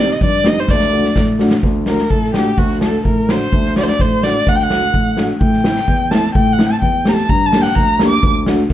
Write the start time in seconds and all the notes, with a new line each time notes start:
Already playing: D5
0.00 D#4
0.13 D#5
0.21 G2 D5, kick
0.44 C4 D#4 G4 D#5, snare
0.60 C5
0.68 D2 D5, kick, snare
0.80 snare
0.93 A3 D4 F#4
1.04 snare
1.16 A2, kick, snare
1.39 A3 D4 F#4, snare
1.51 snare
1.63 D2, kick
1.86 A3 D4 F#4 A#4, snare
1.98 snare
2.11 A2 A4, kick
2.22 snare
2.34 A3 D4 F#4 G4, snare
2.58 D2 F#4, kick
2.69 snare
2.81 A3 D4 F#4 A4, snare
3.05 A2 A#4, kick
3.29 A3 D4 F#4 C5, snare
3.53 D2, kick
3.65 snare
3.76 A3 D4 F#4 D5, snare
3.84 C5
3.88 D5, snare
4.00 A2 C5, kick
4.23 A3 D4 F#4 D5, snare
4.46 D2 F#5, kick
4.56 G5, snare
4.62 F#5
4.70 A3 D4 F#4, snare
4.92 A2, kick
5.16 A3 D4 F#4, snare
5.41 A2 G5, kick
5.53 snare
5.64 A3 C4 E4, snare
5.76 snare
5.87 E2, kick
6.11 A3 C4 E4 A5, snare
6.35 A2 G5, kick
6.53 F#5
6.59 A3 C4 E4, snare
6.66 A5
6.82 E2 G5, kick
7.05 A3 C4 G4 A#5, snare
7.14 A5, snare
7.29 G2 A#5, kick
7.46 A5
7.52 A#3 D4 G4, snare
7.62 F#5 G5, snare
7.69 G5
7.75 D2 A#5, kick, snare
7.99 A#3 D4 G4, snare
8.08 D6
8.23 D2, kick
8.46 A3 D4 F#4, snare